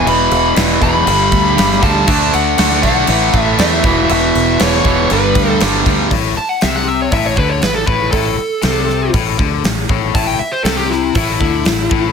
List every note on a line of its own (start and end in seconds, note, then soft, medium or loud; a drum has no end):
0.05 0.30 E1 loud
0.05 0.55 E2 loud
0.05 0.55 B2 loud
0.05 0.56 E3 loud
0.05 0.54 B5 loud
0.05 crash medium
0.31 0.55 E1 loud
0.31 crash medium
0.56 0.80 E1 medium
0.56 0.80 E2 medium
0.56 0.81 B2 medium
0.56 0.80 E3 medium
0.56 snare loud
0.56 crash medium
0.81 1.06 E1 medium
0.81 1.05 E2 medium
0.81 1.05 B2 medium
0.81 1.05 E3 medium
0.81 1.83 B5 loud
0.81 kick medium
0.81 crash medium
1.06 1.31 G1 loud
1.06 1.55 G2 loud
1.06 1.56 D3 loud
1.06 1.56 G3 loud
1.06 crash medium
1.32 1.56 D2 medium
1.32 kick medium
1.32 crash medium
1.56 1.82 G1 medium
1.56 1.80 G2 medium
1.56 1.81 D3 medium
1.56 1.81 G3 medium
1.56 snare loud
1.56 crash medium
1.71 snare soft
1.82 2.07 D2 medium
1.82 2.05 G2 medium
1.82 2.06 D3 medium
1.82 2.06 G3 medium
1.82 2.35 A5 loud
1.82 kick medium
1.82 crash medium
2.07 2.32 D2 loud
2.07 2.56 D3 loud
2.07 2.57 A3 loud
2.07 2.58 D4 loud
2.07 kick loud
2.07 crash loud
2.34 2.58 D2 loud
2.34 2.82 F#5 loud
2.34 crash medium
2.58 2.82 D2 loud
2.58 2.82 D3 medium
2.58 2.83 A3 medium
2.58 2.84 D4 medium
2.58 snare loud
2.58 crash medium
2.83 3.07 B1 medium
2.83 3.07 D3 loud
2.83 3.07 A3 medium
2.83 3.08 D4 loud
2.83 3.40 F#5 loud
2.83 kick medium
2.83 crash medium
3.07 3.32 A1 loud
3.07 3.57 A2 loud
3.07 3.57 E3 loud
3.07 3.58 A3 loud
3.07 crash loud
3.33 3.58 A1 medium
3.33 kick medium
3.33 crash medium
3.40 3.59 E5 loud
3.58 3.83 E2 loud
3.58 3.82 A2 medium
3.58 3.82 E3 medium
3.58 3.82 A3 medium
3.58 4.08 E5 loud
3.58 snare loud
3.58 crash medium
3.83 4.08 E1 medium
3.83 4.09 E2 medium
3.83 4.10 B2 loud
3.83 4.09 E3 loud
3.83 kick loud
3.83 crash medium
4.09 4.34 E1 loud
4.09 4.60 E2 loud
4.09 4.60 B2 loud
4.09 4.60 E3 loud
4.09 4.61 E5 loud
4.09 crash medium
4.35 4.59 E1 loud
4.35 crash medium
4.59 4.84 E1 medium
4.59 4.85 E2 medium
4.59 4.85 B2 medium
4.59 4.85 E3 medium
4.59 5.12 C#5 medium
4.59 snare loud
4.59 crash medium
4.84 5.09 E1 medium
4.84 5.09 E2 medium
4.84 5.09 B2 medium
4.84 5.09 E3 medium
4.84 kick medium
4.84 crash medium
5.10 5.35 G1 medium
5.10 5.59 G2 loud
5.10 5.60 D3 loud
5.10 5.60 G3 loud
5.10 5.58 B4 medium
5.10 crash medium
5.35 5.60 D2 medium
5.35 kick medium
5.35 crash medium
5.60 5.85 G1 loud
5.60 5.86 G2 medium
5.60 5.86 D3 medium
5.60 5.86 G3 medium
5.60 snare loud
5.60 crash medium
5.86 6.10 D2 medium
5.86 6.10 G2 medium
5.86 6.10 D3 medium
5.86 6.10 G3 loud
5.86 kick medium
5.86 crash medium
6.11 6.35 A1 medium
6.11 6.36 A2 loud
6.11 kick loud
6.11 open hi-hat medium
6.37 6.49 A5 loud
6.37 muted overdriven electric guitar stroke medium
6.37 muted fingered electric bass stroke soft
6.49 6.62 F#5 medium
6.61 7.10 C2 medium
6.61 7.12 C3 loud
6.61 6.75 E5 medium
6.61 snare loud
6.61 open hi-hat medium
6.75 6.88 F#5 medium
6.88 7.00 E5 medium
7.02 7.12 C#5 medium
7.12 7.36 A1 loud
7.12 7.37 A2 loud
7.12 7.25 E5 medium
7.12 kick loud
7.12 open hi-hat medium
7.26 7.38 C#5 medium
7.37 7.61 D2 medium
7.37 7.62 D3 medium
7.37 7.50 B4 medium
7.37 kick medium
7.49 7.62 C#5 medium
7.62 7.87 A1 medium
7.62 7.83 A2 medium
7.62 7.75 B4 loud
7.62 snare loud
7.62 open hi-hat medium
7.75 7.87 A4 medium
7.87 8.11 A1 medium
7.87 8.10 A2 medium
7.87 8.11 B4 medium
7.87 kick loud
8.11 8.37 A1 loud
8.11 8.37 A2 loud
8.11 9.11 A4 loud
8.11 kick loud
8.11 open hi-hat medium
8.38 muted overdriven electric guitar stroke medium
8.38 muted fingered electric bass stroke soft
8.62 9.11 C2 medium
8.62 9.13 C3 medium
8.62 snare loud
8.62 open hi-hat medium
8.89 snare soft
9.14 9.38 A1 medium
9.14 9.38 A2 loud
9.14 kick loud
9.14 open hi-hat medium
9.39 9.63 D2 medium
9.39 9.64 D3 loud
9.39 kick loud
9.64 9.88 A1 medium
9.64 9.85 A2 medium
9.64 snare loud
9.64 open hi-hat medium
9.89 10.13 A1 medium
9.89 10.14 A2 medium
9.89 kick loud
10.15 10.39 A1 loud
10.15 10.39 A2 loud
10.15 10.27 A5 loud
10.15 kick loud
10.15 open hi-hat medium
10.27 10.39 G5 medium
10.39 10.52 E5 medium
10.39 muted fingered electric bass stroke soft
10.39 muted overdriven electric guitar stroke medium
10.52 10.64 C5 medium
10.64 11.12 C2 medium
10.64 11.15 C3 loud
10.64 10.77 A4 medium
10.64 snare loud
10.64 open hi-hat medium
10.77 10.90 G4 medium
10.90 11.15 E4 medium
10.90 snare soft
11.15 11.39 A1 loud
11.15 11.40 A2 loud
11.15 12.12 E4 loud
11.15 kick loud
11.15 open hi-hat medium
11.41 11.65 D2 loud
11.41 11.66 D3 medium
11.41 kick medium
11.65 11.90 A1 medium
11.65 11.87 A2 medium
11.65 snare loud
11.65 open hi-hat medium
11.90 12.12 A1 medium
11.90 12.12 A2 loud
11.90 kick loud